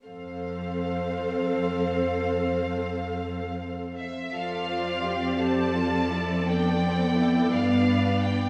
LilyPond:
<<
  \new Staff \with { instrumentName = "Violin section" } { \time 6/8 \key f \lydian \tempo 4. = 57 r2. | r2 r8 e''8 | f''4. a''4. | g''4. f''4 g''8 | }
  \new Staff \with { instrumentName = "Violin section" } { \time 6/8 \key f \lydian << { f''2.~ | f''2~ f''8 r8 | d''2.~ | d''2. | } \\ { c''2.~ | c''2~ c''8 r8 | a'8 c''8 g'8 a'4.~ | a'4. b'4. | } >> }
  \new Staff \with { instrumentName = "Viola section" } { \time 6/8 \key f \lydian << { a'2.~ | a'2~ a'8 r8 | f'4. g'8 f'8 e'8 | d'8 c'8 e'8 d'4. | } \\ { c'2.~ | c'2~ c'8 r8 | c'2. | b2. | } >> }
  \new Staff \with { instrumentName = "Cello section" } { \clef bass \time 6/8 \key f \lydian f,2.~ | f,2~ f,8 r8 | f,2.~ | f,4. g,4. | }
>>